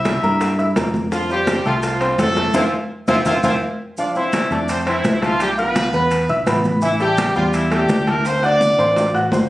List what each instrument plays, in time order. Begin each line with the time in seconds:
Already playing: fingered electric bass C2, grand piano E4 E5 E6, horn section E4 E5
0.05 high bongo, high conga, high timbale, low timbale, maracas
0.23 fingered electric bass G2, grand piano A#3 A#4 A#5, high bongo, maracas
0.41 high bongo, high conga, high timbale, maracas
0.59 grand piano E4 E5 E6, high bongo, high conga, maracas
0.76 fingered electric bass F2, grand piano A#3 A#4 A#5, high bongo, low bongo, high conga, high timbale, low timbale, maracas
0.94 high bongo, high conga, maracas
1.12 grand piano F3 F4 F5, horn section F3 F4, high bongo, high conga, maracas
1.30 horn section G3 G4, grand piano C4 C5 C6, high bongo, high conga, maracas
1.47 high bongo, high conga, high timbale, low timbale, maracas
1.65 fingered electric bass C2, horn section F3 F4, grand piano A3 A4 A5, high bongo, high conga, maracas
1.83 horn section F3 F4, high bongo, high conga, high timbale, maracas
2.01 grand piano C4 C5 C6, high bongo, high conga, high timbale, maracas
2.18 fingered electric bass F2, horn section A3 A4, high bongo, low bongo, high conga, high timbale, low timbale, maracas
2.36 grand piano A3 A4 A5, high conga, high timbale, maracas
2.54 fingered electric bass F2, horn section C4 E4 F4, grand piano C5 E5 F5, low bongo, high conga, high timbale, maracas
3.07 fingered electric bass F2, horn section C4 E4 F4, grand piano C5 E5 F5, low bongo, high conga, high timbale, maracas
3.25 fingered electric bass F2, horn section C4 E4 F4, grand piano C5 E5 F5, low bongo, high conga, high timbale, maracas
3.43 fingered electric bass F2, horn section C4 E4 F4, grand piano C5 E5 F5, low bongo, high conga, high timbale, maracas
3.98 grand piano F3 F4 F5, horn section D4 D5, high conga, maracas
4.15 horn section E3 E4, grand piano C4 C5 C6, high conga, maracas
4.33 high conga, high timbale, low timbale, maracas
4.51 fingered electric bass F2, grand piano A3 A4 A5, horn section D4 D5, high conga, maracas
4.69 horn section C4 C5, high conga, high timbale, maracas
4.87 horn section E3 E4, grand piano C4 C5 C6, high conga, high timbale, maracas
5.04 fingered electric bass B1, high conga, high timbale, low timbale, maracas
5.22 horn section F3 F4, grand piano A3 A4 A5, high conga, high timbale, maracas
5.40 horn section G3 G4, high conga, high timbale, maracas
5.58 horn section B3 B4, grand piano F4 F5 F6, high conga, maracas
5.76 high conga, high timbale, low timbale, maracas
5.93 fingered electric bass E2, grand piano B3 B4 B5, maracas
6.11 high conga, high timbale, maracas
6.29 fingered electric bass B1, grand piano E4 E5 E6, high conga, maracas
6.47 fingered electric bass A1, grand piano B3 B4 B5, high conga, high timbale, low timbale, maracas
6.64 high conga, maracas
6.82 grand piano E3 E4 E5, horn section E3 E4, high conga, maracas
7.00 horn section G3 G4, grand piano A3 A4 A5, high conga, maracas
7.18 high conga, high timbale, low timbale, maracas
7.35 fingered electric bass E2, horn section F3 F4, grand piano G3 G4 G5, high conga, maracas
7.53 horn section E3 E4, high conga, high timbale, maracas
7.71 horn section G3 G4, grand piano A3 A4 A5, high conga, high timbale, maracas
7.89 fingered electric bass D2, high conga, high timbale, low timbale, maracas
8.07 grand piano A3 A4 A5, horn section A#3 A#4, high conga, high timbale, maracas
8.25 horn section C4 C5, high conga, high timbale, maracas
8.42 horn section D4 D5, grand piano F#4 F#5 F#6, high conga, high timbale, maracas
8.61 high conga, maracas
8.79 fingered electric bass A1, grand piano C4 C5 C6, high timbale, maracas
8.96 high conga, low timbale, maracas
9.14 fingered electric bass A1, grand piano F#4 F#5 F#6, high conga, low timbale, maracas
9.32 fingered electric bass G1, grand piano C4 C5 C6, high conga, low timbale, maracas